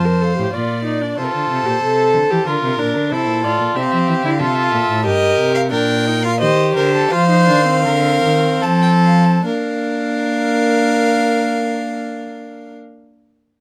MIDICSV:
0, 0, Header, 1, 5, 480
1, 0, Start_track
1, 0, Key_signature, -2, "major"
1, 0, Tempo, 645856
1, 875, Time_signature, 3, 2, 24, 8
1, 3758, Tempo, 685714
1, 5198, Tempo, 755668
1, 6158, Tempo, 847458
1, 8979, End_track
2, 0, Start_track
2, 0, Title_t, "Violin"
2, 0, Program_c, 0, 40
2, 0, Note_on_c, 0, 81, 68
2, 163, Note_on_c, 0, 77, 73
2, 174, Note_off_c, 0, 81, 0
2, 392, Note_off_c, 0, 77, 0
2, 397, Note_on_c, 0, 74, 72
2, 870, Note_on_c, 0, 72, 84
2, 881, Note_off_c, 0, 74, 0
2, 920, Note_on_c, 0, 70, 73
2, 931, Note_off_c, 0, 72, 0
2, 975, Note_on_c, 0, 72, 91
2, 986, Note_off_c, 0, 70, 0
2, 1840, Note_on_c, 0, 70, 80
2, 1851, Note_off_c, 0, 72, 0
2, 2310, Note_off_c, 0, 70, 0
2, 2315, Note_on_c, 0, 72, 94
2, 2557, Note_on_c, 0, 74, 82
2, 2568, Note_off_c, 0, 72, 0
2, 2791, Note_on_c, 0, 76, 68
2, 2802, Note_off_c, 0, 74, 0
2, 2844, Note_on_c, 0, 77, 74
2, 2855, Note_off_c, 0, 76, 0
2, 2906, Note_on_c, 0, 76, 73
2, 2917, Note_off_c, 0, 77, 0
2, 2961, Note_on_c, 0, 77, 69
2, 2972, Note_off_c, 0, 76, 0
2, 3026, Note_on_c, 0, 76, 73
2, 3038, Note_off_c, 0, 77, 0
2, 3078, Note_on_c, 0, 77, 69
2, 3089, Note_off_c, 0, 76, 0
2, 3141, Note_on_c, 0, 76, 72
2, 3152, Note_off_c, 0, 77, 0
2, 3200, Note_on_c, 0, 77, 70
2, 3211, Note_off_c, 0, 76, 0
2, 3256, Note_on_c, 0, 76, 73
2, 3268, Note_off_c, 0, 77, 0
2, 3317, Note_on_c, 0, 77, 74
2, 3328, Note_off_c, 0, 76, 0
2, 3377, Note_on_c, 0, 76, 76
2, 3389, Note_off_c, 0, 77, 0
2, 3439, Note_on_c, 0, 77, 83
2, 3450, Note_off_c, 0, 76, 0
2, 3502, Note_on_c, 0, 76, 95
2, 3513, Note_off_c, 0, 77, 0
2, 3748, Note_off_c, 0, 76, 0
2, 3752, Note_on_c, 0, 75, 121
2, 4095, Note_off_c, 0, 75, 0
2, 4100, Note_on_c, 0, 77, 98
2, 4148, Note_off_c, 0, 77, 0
2, 4216, Note_on_c, 0, 79, 107
2, 4575, Note_on_c, 0, 77, 111
2, 4586, Note_off_c, 0, 79, 0
2, 4694, Note_off_c, 0, 77, 0
2, 4698, Note_on_c, 0, 75, 109
2, 4939, Note_off_c, 0, 75, 0
2, 4944, Note_on_c, 0, 72, 111
2, 5189, Note_off_c, 0, 72, 0
2, 5193, Note_on_c, 0, 77, 120
2, 6160, Note_on_c, 0, 81, 91
2, 6168, Note_off_c, 0, 77, 0
2, 6264, Note_off_c, 0, 81, 0
2, 6268, Note_on_c, 0, 79, 86
2, 6313, Note_off_c, 0, 79, 0
2, 6392, Note_on_c, 0, 77, 86
2, 6508, Note_on_c, 0, 81, 79
2, 6517, Note_off_c, 0, 77, 0
2, 6624, Note_off_c, 0, 81, 0
2, 6627, Note_on_c, 0, 77, 104
2, 8494, Note_off_c, 0, 77, 0
2, 8979, End_track
3, 0, Start_track
3, 0, Title_t, "Violin"
3, 0, Program_c, 1, 40
3, 0, Note_on_c, 1, 72, 83
3, 396, Note_on_c, 1, 74, 77
3, 407, Note_off_c, 1, 72, 0
3, 869, Note_off_c, 1, 74, 0
3, 874, Note_on_c, 1, 69, 95
3, 1831, Note_on_c, 1, 70, 90
3, 1843, Note_off_c, 1, 69, 0
3, 2314, Note_off_c, 1, 70, 0
3, 2321, Note_on_c, 1, 69, 88
3, 2787, Note_off_c, 1, 69, 0
3, 2795, Note_on_c, 1, 67, 92
3, 3264, Note_on_c, 1, 69, 94
3, 3275, Note_off_c, 1, 67, 0
3, 3753, Note_off_c, 1, 69, 0
3, 3756, Note_on_c, 1, 70, 111
3, 4213, Note_off_c, 1, 70, 0
3, 4217, Note_on_c, 1, 70, 102
3, 4691, Note_off_c, 1, 70, 0
3, 4705, Note_on_c, 1, 72, 109
3, 4945, Note_off_c, 1, 72, 0
3, 4953, Note_on_c, 1, 70, 86
3, 5073, Note_off_c, 1, 70, 0
3, 5077, Note_on_c, 1, 69, 93
3, 5195, Note_on_c, 1, 72, 117
3, 5205, Note_off_c, 1, 69, 0
3, 5661, Note_off_c, 1, 72, 0
3, 5664, Note_on_c, 1, 70, 106
3, 6155, Note_on_c, 1, 69, 105
3, 6163, Note_off_c, 1, 70, 0
3, 6625, Note_off_c, 1, 69, 0
3, 6632, Note_on_c, 1, 70, 92
3, 8498, Note_off_c, 1, 70, 0
3, 8979, End_track
4, 0, Start_track
4, 0, Title_t, "Viola"
4, 0, Program_c, 2, 41
4, 33, Note_on_c, 2, 70, 70
4, 154, Note_on_c, 2, 69, 71
4, 165, Note_off_c, 2, 70, 0
4, 271, Note_off_c, 2, 69, 0
4, 276, Note_on_c, 2, 67, 82
4, 390, Note_off_c, 2, 67, 0
4, 394, Note_on_c, 2, 65, 83
4, 623, Note_off_c, 2, 65, 0
4, 628, Note_on_c, 2, 63, 84
4, 754, Note_on_c, 2, 62, 74
4, 765, Note_off_c, 2, 63, 0
4, 874, Note_on_c, 2, 65, 95
4, 885, Note_off_c, 2, 62, 0
4, 1230, Note_on_c, 2, 67, 80
4, 1241, Note_off_c, 2, 65, 0
4, 1347, Note_off_c, 2, 67, 0
4, 1352, Note_on_c, 2, 69, 103
4, 1715, Note_on_c, 2, 67, 102
4, 1726, Note_off_c, 2, 69, 0
4, 1835, Note_off_c, 2, 67, 0
4, 1839, Note_on_c, 2, 65, 97
4, 2073, Note_on_c, 2, 62, 99
4, 2084, Note_off_c, 2, 65, 0
4, 2318, Note_on_c, 2, 64, 107
4, 2329, Note_off_c, 2, 62, 0
4, 2551, Note_off_c, 2, 64, 0
4, 2556, Note_on_c, 2, 65, 98
4, 2796, Note_on_c, 2, 60, 108
4, 2807, Note_off_c, 2, 65, 0
4, 3155, Note_off_c, 2, 60, 0
4, 3158, Note_on_c, 2, 64, 103
4, 3205, Note_off_c, 2, 64, 0
4, 3268, Note_on_c, 2, 65, 116
4, 3745, Note_off_c, 2, 65, 0
4, 3754, Note_on_c, 2, 67, 101
4, 4214, Note_off_c, 2, 67, 0
4, 4217, Note_on_c, 2, 62, 90
4, 4467, Note_on_c, 2, 63, 81
4, 4477, Note_off_c, 2, 62, 0
4, 4585, Note_off_c, 2, 63, 0
4, 4589, Note_on_c, 2, 65, 102
4, 4636, Note_off_c, 2, 65, 0
4, 4708, Note_on_c, 2, 67, 108
4, 5200, Note_on_c, 2, 65, 99
4, 5209, Note_off_c, 2, 67, 0
4, 5305, Note_off_c, 2, 65, 0
4, 5309, Note_on_c, 2, 63, 91
4, 5425, Note_off_c, 2, 63, 0
4, 5428, Note_on_c, 2, 62, 103
4, 5544, Note_off_c, 2, 62, 0
4, 5548, Note_on_c, 2, 60, 96
4, 6607, Note_off_c, 2, 60, 0
4, 6625, Note_on_c, 2, 62, 96
4, 8492, Note_off_c, 2, 62, 0
4, 8979, End_track
5, 0, Start_track
5, 0, Title_t, "Cello"
5, 0, Program_c, 3, 42
5, 0, Note_on_c, 3, 41, 78
5, 273, Note_off_c, 3, 41, 0
5, 284, Note_on_c, 3, 45, 80
5, 330, Note_off_c, 3, 45, 0
5, 400, Note_on_c, 3, 46, 82
5, 868, Note_off_c, 3, 46, 0
5, 883, Note_on_c, 3, 48, 69
5, 997, Note_off_c, 3, 48, 0
5, 1003, Note_on_c, 3, 50, 66
5, 1112, Note_off_c, 3, 50, 0
5, 1116, Note_on_c, 3, 48, 77
5, 1228, Note_off_c, 3, 48, 0
5, 1232, Note_on_c, 3, 46, 65
5, 1350, Note_off_c, 3, 46, 0
5, 1354, Note_on_c, 3, 48, 77
5, 1590, Note_on_c, 3, 50, 71
5, 1601, Note_off_c, 3, 48, 0
5, 1709, Note_off_c, 3, 50, 0
5, 1713, Note_on_c, 3, 52, 77
5, 1762, Note_off_c, 3, 52, 0
5, 1836, Note_on_c, 3, 50, 81
5, 1953, Note_off_c, 3, 50, 0
5, 1958, Note_on_c, 3, 48, 78
5, 2075, Note_off_c, 3, 48, 0
5, 2080, Note_on_c, 3, 46, 82
5, 2198, Note_on_c, 3, 50, 78
5, 2210, Note_off_c, 3, 46, 0
5, 2312, Note_on_c, 3, 48, 75
5, 2323, Note_off_c, 3, 50, 0
5, 2433, Note_on_c, 3, 46, 80
5, 2444, Note_off_c, 3, 48, 0
5, 2552, Note_on_c, 3, 45, 81
5, 2563, Note_off_c, 3, 46, 0
5, 2666, Note_off_c, 3, 45, 0
5, 2670, Note_on_c, 3, 46, 72
5, 2719, Note_off_c, 3, 46, 0
5, 2791, Note_on_c, 3, 48, 77
5, 2905, Note_off_c, 3, 48, 0
5, 2909, Note_on_c, 3, 53, 82
5, 2958, Note_off_c, 3, 53, 0
5, 3032, Note_on_c, 3, 52, 83
5, 3080, Note_off_c, 3, 52, 0
5, 3153, Note_on_c, 3, 50, 84
5, 3269, Note_on_c, 3, 48, 89
5, 3280, Note_off_c, 3, 50, 0
5, 3512, Note_off_c, 3, 48, 0
5, 3517, Note_on_c, 3, 46, 84
5, 3565, Note_off_c, 3, 46, 0
5, 3640, Note_on_c, 3, 45, 88
5, 3759, Note_on_c, 3, 43, 79
5, 3769, Note_off_c, 3, 45, 0
5, 3988, Note_off_c, 3, 43, 0
5, 3992, Note_on_c, 3, 48, 88
5, 4224, Note_on_c, 3, 46, 94
5, 4235, Note_off_c, 3, 48, 0
5, 4705, Note_on_c, 3, 51, 88
5, 4715, Note_off_c, 3, 46, 0
5, 4948, Note_off_c, 3, 51, 0
5, 4952, Note_on_c, 3, 50, 93
5, 5195, Note_off_c, 3, 50, 0
5, 5200, Note_on_c, 3, 53, 95
5, 5428, Note_on_c, 3, 51, 90
5, 5437, Note_off_c, 3, 53, 0
5, 5664, Note_on_c, 3, 50, 104
5, 5674, Note_off_c, 3, 51, 0
5, 5908, Note_off_c, 3, 50, 0
5, 5913, Note_on_c, 3, 51, 90
5, 6155, Note_off_c, 3, 51, 0
5, 6160, Note_on_c, 3, 53, 100
5, 6618, Note_off_c, 3, 53, 0
5, 6626, Note_on_c, 3, 58, 80
5, 8493, Note_off_c, 3, 58, 0
5, 8979, End_track
0, 0, End_of_file